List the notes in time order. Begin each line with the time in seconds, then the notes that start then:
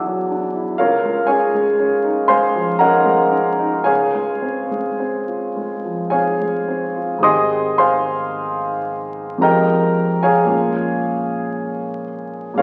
Already playing: E2 E3 F#3 D4 E4 E5 F#5 D6 E6
0.07 F#3
0.31 D4
0.56 E4
0.78 C#2 F4 A#4 C#5 F5
1.05 G#3
1.27 C#4 G#4 C#5 F5 G#5
1.54 G#3
1.80 C#4
2.04 D#4
2.28 G#3 C5 F5 G#5 C6
2.55 F3
2.79 C#4 A#4 D#5 F#5 A#5
3.06 G#3
3.32 C#4
3.59 D#4
3.84 C#2 G#4 C#5 F5 G#5
4.15 G#3
4.42 C4
4.71 G#3
5.00 C4
5.28 F4
5.56 G#3
5.85 F3
6.10 C4 G#4 C#5 F5 G#5
6.41 G#3
6.68 C4
6.96 F4
7.19 G#2 D#3 G#3 C4
7.23 G4 D#5 G#5 C6 D#6
7.78 C5 F5 G#5 C6
9.38 F2 F3 G#3 C4
9.42 G4 A#4 D#5 G5 A#5
10.23 G#4 C#5 F5 G#5
10.45 A#2 F3 G#3 C#4
10.49 F4
12.54 A#2 F3 G#3 C#4 F5
12.59 F4 A#4 C#5